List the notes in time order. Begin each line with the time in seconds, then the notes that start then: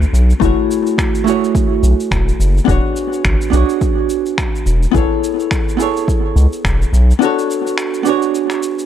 Already playing: B3 D4 F#4 A4 C#5
0.02 shaker
0.13 B1, shaker
0.30 shaker
0.40 F#1 A3 E4 F#4, kick, shaker
0.44 G#4 C#5
0.71 shaker
0.87 shaker
0.98 finger snap, kick, shaker
1.15 shaker
1.24 A3 E4 F#4, shaker
1.28 G#4 C#5
1.44 shaker
1.55 kick, shaker
1.83 B1, shaker
2.00 shaker
2.11 E1, finger snap, kick, shaker
2.29 shaker
2.40 F#1, shaker
2.57 shaker
2.65 E1 B3 D4 F#4, kick
2.69 G#4 C#5, shaker
2.96 shaker
3.13 shaker
3.25 G#1, finger snap, kick, shaker
3.41 shaker
3.50 B1 B3 D4 F#4, shaker
3.54 G#4 C#5
3.69 shaker
3.81 kick, shaker
4.10 shaker
4.26 shaker
4.38 finger snap, kick, shaker
4.55 shaker
4.66 E1, shaker
4.83 shaker
4.91 A1 B3 E4 G#4, kick, shaker
4.96 A4 C#5
5.24 shaker
5.40 shaker
5.51 finger snap, kick, shaker
5.69 shaker
5.77 B3 E4 G#4 A4, shaker
5.82 C#5
5.97 shaker
6.08 kick, shaker
6.36 C#2, shaker
6.53 shaker
6.64 E1, finger snap, kick, shaker
6.82 shaker
6.93 B1, shaker
7.11 shaker
7.19 B3 D4 F#4, shaker
7.23 A4 C#5
7.39 shaker
7.51 shaker
7.67 shaker
7.78 finger snap, shaker
7.94 shaker
8.03 B3 D4 F#4, shaker
8.07 G#4 C#5
8.22 shaker
8.35 shaker
8.50 finger snap, shaker
8.63 shaker
8.79 shaker